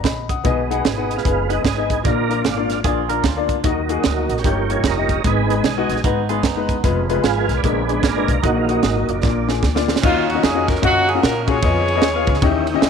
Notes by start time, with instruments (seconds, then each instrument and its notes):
0.04 upright bass A#1, grand piano D#5 B5, kick, snare, closed hi-hat
0.29 grand piano F#5 D#6, kick, closed hi-hat
0.44 upright bass B1, grand piano B2 B3 D#4 G#4 D#5, tonewheel organ G#3 B3 D#4, kick, closed hi-hat
0.70 grand piano B3 D#4 G#4 F#5, closed hi-hat
0.84 upright bass G#1, tonewheel organ G#3 B3 D#4, snare, closed hi-hat
0.97 grand piano B3 D#4 G#4 F#5
1.11 closed hi-hat
1.17 tonewheel organ G#3 B3 F4, snare
1.24 upright bass F#1, grand piano B3 D#4 G#4 B4, kick, closed hi-hat
1.49 tonewheel organ G#3 B3 D#4 F#4, grand piano B3 D#4 G#4 D#5, closed hi-hat
1.65 upright bass G#1, tonewheel organ B3 D#4 G#4, kick, snare, closed hi-hat
1.77 grand piano B3 D#4 G#4 D#5
1.90 kick, closed hi-hat
2.03 upright bass A#1, grand piano A#2 A#3 D4 F4 D5, tonewheel organ F3 A#3 D4 F4 A#4, kick, closed hi-hat
2.29 grand piano A#3 D4 F4 A#4, closed hi-hat
2.45 upright bass G#1, snare, closed hi-hat
2.56 grand piano A#3 D4 F4 D5
2.70 snare, closed hi-hat
2.84 upright bass A#1, grand piano A#3 D4 F4 D5, clean electric guitar F4 G#4, kick, closed hi-hat
3.09 grand piano A#3 D4 F4 D5, clean electric guitar A#4, closed hi-hat
3.23 upright bass D2, clean electric guitar D4 F4, kick, snare, closed hi-hat
3.37 grand piano A#3 D4 F4 D5
3.49 kick, closed hi-hat
3.63 upright bass D#2, grand piano D#3 A#3 D#4 F#4 D#5, tonewheel organ F#3 A#3 D#4, kick, closed hi-hat
3.89 grand piano A#3 D#4 F#4 G#4, closed hi-hat
4.04 upright bass D2, tonewheel organ F#3 A#3 D#4, snare, closed hi-hat
4.16 grand piano A#3 D#4 F#4 D#5
4.29 upright bass A#1, closed hi-hat
4.37 tonewheel organ A#3 C#4 G4, snare
4.44 upright bass G1, grand piano G2 A#3 D#4 G4 C#5, tonewheel organ F3 G3 C#4, kick, closed hi-hat
4.69 grand piano A#3 D#4 G4 C#5, tonewheel organ G#4, closed hi-hat
4.84 upright bass F1, tonewheel organ C#4 D#4 A#4, kick, snare, closed hi-hat
4.96 grand piano A#3 D#4 G4 D#5
5.09 kick, closed hi-hat
5.24 upright bass G#1, grand piano G#2 G#3 B3 D#4 B4, tonewheel organ D#3 G#3 B3 D#4 G#4 B4, kick, closed hi-hat
5.49 grand piano G#3 B3 D#4 B4, closed hi-hat
5.64 upright bass B1, snare, closed hi-hat
5.76 grand piano G#3 B3 D#4 F#4
5.89 upright bass A#1, snare, closed hi-hat
5.96 snare
6.04 upright bass G#1, grand piano G#3 B3 D#4 B4, clean electric guitar D#4 F#4, kick, closed hi-hat
6.29 grand piano G#3 B3 D#4 B4, clean electric guitar F4 G#4, closed hi-hat
6.43 upright bass F#1, clean electric guitar B3 D#4, kick, snare, closed hi-hat
6.56 grand piano G#3 B3 D#4 B4
6.69 kick, closed hi-hat
6.84 upright bass F1, tonewheel organ F3 G#3 B3, grand piano G#3 B3 F4 B4, kick, closed hi-hat
7.09 grand piano G#3 B3 F4 B4, closed hi-hat
7.24 upright bass G#1, tonewheel organ B3 F4 G#4, snare, closed hi-hat
7.36 grand piano G#3 B3 F4 A#4
7.49 upright bass B1, snare, closed hi-hat
7.57 tonewheel organ D4 G#4 B4
7.64 upright bass A#1, grand piano A#2 G#3 B3 D4 A#4, tonewheel organ D3 G#3 B3, kick, closed hi-hat
7.89 grand piano G#3 B3 D4 B4, closed hi-hat
8.03 upright bass G#1, tonewheel organ D4 F4 A#4, kick, snare, closed hi-hat
8.16 grand piano G#3 B3 D4 A#4
8.28 upright bass B1, kick, closed hi-hat
8.42 upright bass A#1, grand piano A#2 A#3 D#4 F#4 D#5, tonewheel organ D#3 F#3 A#3 D#4 F#4, kick, closed hi-hat
8.61 tonewheel organ F4
8.68 tonewheel organ F#3 A#3 D#4, grand piano A#3 D#4 F#4 F#5, closed hi-hat
8.83 upright bass G#1, snare, closed hi-hat
8.96 grand piano A#3 D#4 F#4 D#5
9.09 upright bass F#1, tonewheel organ F3 A#3 D4, closed hi-hat
9.21 upright bass A#1, grand piano A#2 A#3 D4 F4 D5, tonewheel organ D3 F3 A#3, kick, snare
9.47 grand piano A#3 D4 F4 G#4, snare
9.63 upright bass D2, kick, snare
9.75 grand piano A#3 D4 F4 D5, snare
9.88 snare
9.96 snare
10.02 upright bass D#2, grand piano D#3 C#4 F4 F#4 D#5, saxophone section A#3 C#4 F4, tonewheel organ C#4 D#4 F4 F#4, kick, crash
10.29 saxophone section F#4, ride
10.34 grand piano C#4 F4 F#4 D#5
10.43 upright bass F2, saxophone section G#4, snare, ride
10.54 grand piano C#4 F4 F#4 D#5
10.68 saxophone section A#4, kick, snare, ride
10.76 snare
10.82 upright bass F#2, saxophone section A#3 C#4 F#4, grand piano C#4 F4 F#4 D#5, kick, ride
11.09 saxophone section G#4, ride
11.15 grand piano C#4 F4 F#4 F#5
11.23 upright bass A#2, saxophone section A#4, snare, ride
11.47 grand piano C#4 F4 F#4 G#4, saxophone section G#4 C#5, kick, ride
11.62 upright bass F2, tonewheel organ F3 B3 D#4 G#4, grand piano B3 F4 G#4 D#5, kick, ride
11.88 ride
11.95 grand piano B3 F4 G#4 D#5
12.02 upright bass D#2, snare, ride
12.15 grand piano B3 F4 G#4 F5
12.27 upright bass C#2, kick, ride
12.34 snare
12.42 upright bass D#2, grand piano D#3 C#4 E4 G4 D#5, tonewheel organ C#4 D#4 E4 F#4, kick, ride
12.48 tonewheel organ G4
12.67 ride
12.74 grand piano C#4 E4 G4 D#5
12.82 upright bass E2, snare, ride